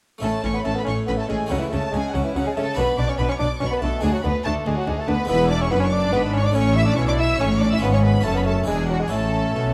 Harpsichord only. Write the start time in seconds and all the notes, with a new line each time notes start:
0.18 A3 C#4 E4
0.23 A2
0.44 A2
0.65 A2
0.87 A2
1.08 A2
1.30 A2
1.47 A3 C#4 E4
1.51 C#3
1.73 C#3
1.94 C#3
2.15 C#3
2.37 C#3
2.57 C#3
2.74 B2 D4 F#4
2.99 B2
3.19 B2
3.41 B2
3.61 B2
3.82 B2
4.01 D2 D4 F#4
4.25 D2
4.45 D2
4.66 D2
4.87 D2
5.08 D2
5.25 G#3 D4 E4
5.30 E2
5.72 F#2
6.14 G#2
6.51 A3 C#4 E4
6.56 A2
6.98 B2
7.40 A2
7.78 C#4 F4
7.82 G#2
8.20 C#4 F#4
8.25 F#2
8.64 D4 E4 B4
8.68 E2
9.08 C#4 E4 A4
9.12 A2
9.56 B2